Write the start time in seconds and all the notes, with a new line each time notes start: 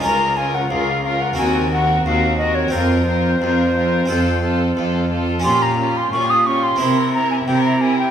0.00 C#2 C#4 F4 A#4 A#5
0.05 C#2 C#4 F4 A#4
0.37 C#4 F4 A#4 G#5
0.55 F#5
0.71 C#2 C#4 F4 A#4 F5
1.04 C#4 F4 A#4 F5
1.21 F#5
1.33 C4 F#4 A#4
1.37 D#2 C4 F#4 A#4 G#5
1.72 C4 F#4 A#4 F#5
2.05 D#2 C4 F#4 A#4 F5
2.38 C4 F#4 A#4 D#5
2.55 C#5
2.68 C4 F4 A#4 C5
2.73 F2 C4 F4 A#4
3.07 C4 F4 A#4
3.41 F2 C4 F4 A#4
3.75 C4 F4 A#4
4.05 C4 F4 A4
4.10 F2 F4 A4
4.42 C4 F4 A4
4.77 F2 C4 F4 A4
5.11 C4 F4 A4
5.40 C#4 F4 G4
5.44 A#2 C#4 F4 G4 C6
5.62 A#5
5.79 C#4 F4 G4
5.97 C6
6.12 A#2 C#4 F4 G4 C#6
6.30 D#6
6.47 C#4 F4 G4 C#6
6.63 C6
6.76 C4 E4 A#4
6.81 C3 C4 E4 A#4
7.14 C4 E4 A#4 A#5
7.31 G#5
7.46 C3 C4 E4 A#4 G5
7.64 A#5
7.81 C4 E4 A#4 G#5
7.99 G5